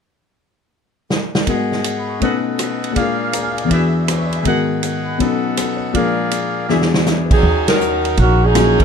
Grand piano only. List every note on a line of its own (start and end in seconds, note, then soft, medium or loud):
1.47 2.22 G#2 soft
1.47 2.22 G#3 soft
1.47 2.22 B3 soft
1.47 2.22 F#4 soft
1.47 2.23 A#4 soft
2.20 2.96 B2 soft
2.20 2.96 A3 soft
2.20 2.97 C#4 soft
2.20 2.98 D#4 soft
2.25 2.98 B4 soft
2.90 3.68 A#2 soft
2.90 3.70 G#3 soft
2.96 3.69 D4 soft
2.96 3.72 F4 soft
3.02 3.74 A#4 soft
3.34 3.51 A#5 soft
3.43 3.59 G#5 soft
3.51 3.64 F5 soft
3.61 4.43 E2 soft
3.61 3.74 D5 soft
3.67 4.44 E3 soft
3.67 4.45 D4 soft
3.73 4.45 F#4 soft
3.73 4.48 G#4 soft
4.08 4.26 B4 soft
4.18 4.34 C#5 soft
4.26 4.38 D5 soft
4.36 4.49 E5 soft
4.43 5.19 G#2 soft
4.43 5.20 D#3 soft
4.43 5.20 B3 soft
4.43 5.21 F#4 soft
4.48 5.22 A#4 medium
5.18 5.94 B2 soft
5.18 5.94 F#3 soft
5.18 5.95 C#4 soft
5.18 5.95 D#4 soft
5.23 5.96 A4 soft
5.58 5.87 B4 soft
5.76 6.02 C#5 soft
5.93 6.68 A#2 soft
5.93 6.69 F3 soft
5.93 6.70 G#3 soft
5.93 6.69 D4 soft
5.97 6.71 A#4 soft
6.69 7.44 E2 medium
6.69 7.44 E3 soft
6.69 7.44 F#3 soft
6.69 7.44 D4 soft
6.69 7.44 G#4 medium
7.07 7.36 C#5 soft
7.25 7.51 B4 soft
8.55 8.77 F#3 soft
8.55 8.77 A#3 soft
8.55 8.77 C#4 soft
8.55 8.77 F4 medium